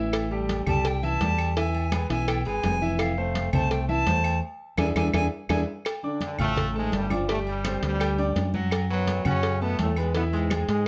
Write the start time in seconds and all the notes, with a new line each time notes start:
Already playing: A1 E3 E4 E5
0.13 cowbell, high conga, low agogo, claves
0.31 G3 G4 A4, high conga
0.49 cowbell, high conga, low timbale, low agogo
0.67 C2 G3 G4 A4 A5, low conga, low agogo, claves
0.85 G5, cowbell, high conga, low agogo
1.03 E3 E4 E5 A5, high conga
1.21 E2 G3 G4 A4, cowbell, high conga, low timbale, low agogo
1.38 low agogo, claves
1.57 E3 E4 E5 G#5, cowbell, high conga
1.74 high conga, low agogo
1.92 G#3 G#4 B4, cowbell, high conga, low timbale, low agogo, claves
2.10 B1 E3 E4 E5 G#5, cowbell, high conga
2.28 G5, cowbell, high conga, low agogo, claves
2.45 G#1 G#3 G#4 B4 G#5, high conga, low agogo
2.63 F1, cowbell, high conga, low timbale, low agogo
2.82 E3 E4 E5
2.99 F5, cowbell, high conga, low agogo, claves
3.18 A3 A4 C5, high conga
3.35 cowbell, high conga, low timbale, low agogo
3.53 C2 A3 A4 C5 A5, low conga, low agogo, claves
3.71 G5, cowbell, low agogo
3.89 E3 E4 E5 A5, high conga
4.06 E2 A3 A4 C5, cowbell, high conga, low timbale, low agogo
4.24 low agogo, claves
4.78 E2 D4 E4 G#4 G#5, cowbell, high conga, high timbale, claves
4.95 E2 D4 E4 G#4 G#5, cowbell, high conga, high timbale, claves
5.13 E2 D4 E4 G#4 G#5, cowbell, high conga, high timbale, claves
5.49 E2 D4 E4 G#4 G#5, cowbell, high conga, high timbale, claves
5.85 cowbell, high conga, low agogo, claves
6.03 D3 D4 D5 D6, high conga
6.21 D3 D4, cowbell, high conga, low timbale, low agogo
6.39 A1 A2 A3 F4 F5 F6, low conga, low agogo, claves
6.56 cowbell, high conga, low conga, low agogo
6.74 G#2 G#3 A3 A4 A5, high conga
6.92 G1 G2 G3, cowbell, high conga, low timbale, low agogo
7.10 F3 D4 F4 D5 D6, high conga, low agogo, claves
7.28 A2 G3 A3 G4 G5, cowbell, high conga
7.47 G2 G3, high conga, low agogo
7.64 C4 C5 C6, cowbell, high conga, low timbale, low agogo, claves
7.82 D2 G2 G3, cowbell, high conga
8.00 G4 G5 G6, cowbell, high conga, low agogo, claves
8.18 D4 D5 D6, high conga, low agogo
8.36 F#2, cowbell, high conga, low timbale, low agogo
8.54 F#3 F#4 F#5, high conga
8.71 cowbell, high conga, low agogo, claves
8.90 F#2 F#3 B3 B4 B5, high conga
9.07 cowbell, high conga, low timbale, low agogo
9.25 F#2 C#3 C#4 F#4 F#5 F#6, low conga, low agogo, claves
9.43 cowbell, high conga, low agogo
9.61 B2 A3 B3 A4 A5, high conga
9.79 E2 A2 A3, cowbell, high conga, low timbale, low agogo
9.96 G#2 G#3 B3 B4 B5, low agogo, claves
10.15 B2 E3 B3 E4 E5, cowbell, high conga
10.33 G#2 G#3, high conga, low agogo
10.50 G#3 G#4 G#5, cowbell, high conga, low timbale, low agogo, claves
10.68 G#2 G#3, cowbell, high conga